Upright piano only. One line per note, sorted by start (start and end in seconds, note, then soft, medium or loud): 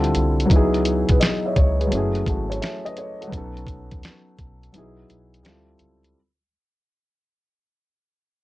0.00 0.49 D3 medium
0.00 0.50 G3 medium
0.00 0.50 C4 medium
0.00 0.51 E4 medium
0.00 0.51 F4 medium
0.00 0.52 A4 medium
0.46 1.86 F#3 medium
0.46 1.87 B3 medium
0.50 1.89 D#4 medium
0.50 1.90 E4 medium
0.56 0.88 G#4 medium
1.10 1.21 G#4 medium
1.10 1.19 B4 medium
1.20 1.43 B4 soft
1.20 1.43 D#5 medium
1.46 1.55 C#5 soft
1.46 1.56 E5 medium
1.56 1.78 C#5 medium
1.80 1.96 G#4 medium
1.80 2.13 B4 medium
1.87 3.26 F#3 medium
1.87 3.29 A3 medium
1.92 3.30 C#4 medium
1.92 3.31 E4 medium
1.97 2.29 G#4 medium
2.29 2.50 F#4 medium
2.29 2.49 A4 medium
2.50 2.61 A4 medium
2.50 2.61 C#5 medium
2.61 2.84 C#5 soft
2.61 2.84 E5 medium
2.85 2.97 B4 medium
2.85 2.97 D#5 medium
2.98 3.20 A4 medium
2.98 3.20 C#5 medium
3.21 3.55 F#4 medium
3.21 3.36 A4 medium
3.27 4.68 F#3 medium
3.27 4.70 B3 medium
3.32 4.71 C#4 medium
3.32 4.72 D#4 medium
3.38 4.73 A4 medium
4.72 5.44 F#3 medium
4.72 5.44 B3 medium
4.72 5.45 D#4 medium
4.72 5.44 E4 medium
4.78 5.46 G#4 medium
5.43 6.14 G3 medium
5.43 6.15 C4 medium
5.43 6.16 E4 medium
5.43 6.16 F4 medium
5.48 6.17 A4 medium